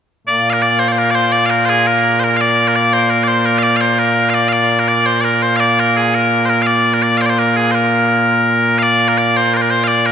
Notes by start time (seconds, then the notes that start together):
0.27 A#2 A#3 D5
0.50 A#4 F5
0.62 D5
0.79 C5
0.89 C5 D5
0.98 A#4
1.11 D5
1.15 C5
1.32 D5
1.46 F5
1.50 A#4
1.65 C5
1.69 G#4
1.87 A#4
2.20 C5
2.24 A#4
2.37 F5
2.41 D5
2.68 A#4
2.76 D5
2.93 C5
3.10 A#4
3.24 D5
3.28 C5
3.45 A#4
3.58 F5
3.63 D5
3.76 F5
3.81 C5
3.99 A#4
4.30 F5
4.34 D5
4.48 F5
4.53 D5
4.79 A#4
4.88 D5
5.06 C5
5.21 A#4 D5
5.42 C5
5.56 D5 F5
5.80 A#4
5.97 G#4
6.15 A#4
6.45 A#4 C5
6.62 F5
6.67 D5
6.94 A#4
7.02 D5
7.17 C5 F5
7.26 C5 D5
7.39 A#4
7.57 G#4
7.71 A#4 C5
8.79 D5 F5
9.08 A#4
9.18 D5
9.37 C5
9.54 A#4 C5
9.62 A#4
9.70 C5
9.84 D5 F5
10.06 A#4